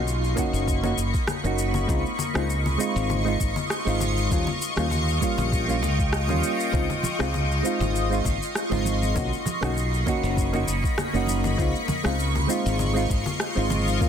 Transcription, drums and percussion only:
0.08 shaker
0.24 shaker
0.37 kick, low conga, shaker
0.54 shaker
0.68 kick, shaker
0.84 low conga, shaker
0.98 shaker
1.14 kick, shaker
1.27 cross-stick, low conga, shaker
1.45 shaker
1.58 shaker
1.74 low conga, shaker
1.89 kick, shaker
2.06 shaker
2.19 low conga, shaker
2.35 cross-stick, shaker
2.50 shaker
2.66 low conga, shaker
2.80 shaker
2.97 shaker
3.10 low conga, shaker
3.27 shaker
3.40 kick, shaker
3.56 low conga, shaker
3.70 cross-stick, shaker
3.87 shaker
4.00 low conga, shaker
4.17 shaker
4.31 kick, shaker
4.47 low conga, shaker
4.62 shaker
4.77 cross-stick, shaker
4.91 low conga, shaker
5.08 shaker
5.22 kick, shaker
5.38 low conga, shaker
5.52 kick, shaker
5.69 shaker
5.83 low conga, shaker
5.99 kick, shaker
6.13 cross-stick, shaker
6.29 low conga, shaker
6.43 shaker
6.60 shaker
6.74 kick, shaker
6.90 low conga, shaker
7.03 high conga, low conga, shaker
7.20 cross-stick, shaker
7.34 low conga, shaker
7.51 shaker
7.65 shaker
7.81 low conga, shaker
7.96 shaker
8.12 shaker
8.25 kick, low conga, shaker
8.43 shaker
8.55 cross-stick, shaker
8.72 low conga, shaker
8.85 high conga, shaker
9.03 high conga, shaker
9.16 kick, low conga, shaker
9.33 shaker
9.46 high conga, low conga, shaker
9.63 cross-stick, low conga, shaker
9.77 shaker
9.94 shaker
10.07 kick, low conga, shaker
10.24 shaker
10.37 kick, shaker
10.54 low conga, shaker
10.68 shaker
10.84 kick, shaker
10.98 cross-stick, low conga, shaker
11.15 shaker
11.27 high conga, shaker
11.44 high conga, low conga, shaker
11.59 kick, shaker
11.75 shaker
11.88 high conga, low conga, shaker
12.05 cross-stick, shaker
12.20 shaker
12.35 low conga, shaker
12.50 shaker
12.66 shaker
12.79 low conga, shaker
12.97 shaker
13.10 kick, shaker
13.26 low conga, shaker
13.40 cross-stick, shaker
13.57 shaker
13.70 high conga, low conga, shaker
13.87 high conga, shaker
14.01 kick, shaker

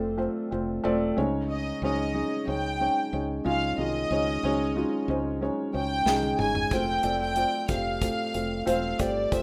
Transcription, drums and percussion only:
6.06 snare
6.23 high tom
6.39 mid tom
6.55 floor tom
6.71 kick, closed hi-hat
7.03 closed hi-hat
7.36 closed hi-hat
7.68 kick, closed hi-hat
8.01 kick, closed hi-hat
8.34 closed hi-hat
8.67 closed hi-hat
8.99 kick, closed hi-hat
9.32 kick, closed hi-hat

